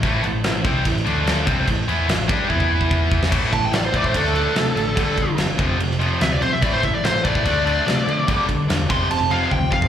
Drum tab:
CC |x-x-x-x-x-x-x-x-|x-x-x-x---------|x-x-x-x-x-x-x-x-|x-x-x-x-x-x-x-x-|
SD |----o----o--o---|----o----------o|----o----o--o---|----o----o--o---|
FT |----------------|----------------|----------------|----------------|
BD |o-----o-o-----o-|o-----o-oo-oo-o-|o-o---ooo-------|o-o---o---------|

CC |x-x-x-x-x-x-x-x-|x-x-x-x-x-x-----|
SD |----o-------o---|----o-----------|
FT |----------------|---------------o|
BD |o-o---ooo-------|o-o---o-----o-o-|